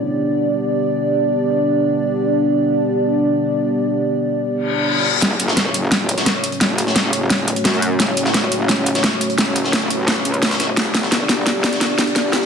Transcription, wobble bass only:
5.22 5.73 F#1 medium
5.74 6.25 F#1 loud
6.61 7.12 F#1 loud
7.13 7.64 F#1 loud
7.65 7.98 F#2 loud
8.00 8.50 F#1 medium
8.52 9.02 F#1 loud
9.38 9.89 F#1 loud
9.90 10.24 A1 loud
10.25 10.76 C#2 loud
10.77 11.28 G1 loud
11.29 11.80 G1 medium
12.16 12.46 G1 loud

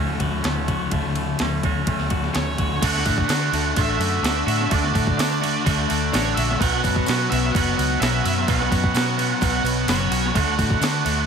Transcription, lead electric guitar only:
2.35 2.84 C#5 medium
2.84 3.80 F#5 loud
3.81 4.73 E5 loud
4.74 5.63 D5 medium
6.14 6.34 C#5 loud
6.35 6.60 E5 loud
6.59 7.32 F#5 loud
7.30 7.52 E5 loud
7.52 8.01 F#5 loud
8.00 8.24 E5 loud
8.26 8.49 E5 loud
8.50 9.42 F#5 loud
9.43 9.86 F#5 loud
9.89 10.37 C#5 medium
10.35 11.26 F#5 loud

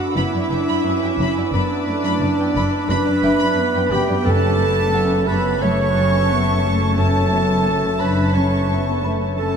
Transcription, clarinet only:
0.00 0.17 F#4 medium
0.16 1.51 E4 medium
1.52 2.91 D4 medium
2.90 3.94 B4 medium
3.92 4.24 G4 medium
4.25 5.29 A4 medium
5.28 5.64 B4 medium
5.62 6.71 C#5 loud
6.98 8.03 A4 medium
8.01 8.36 B4 medium
8.34 9.03 C#5 medium
9.37 9.57 A4 medium

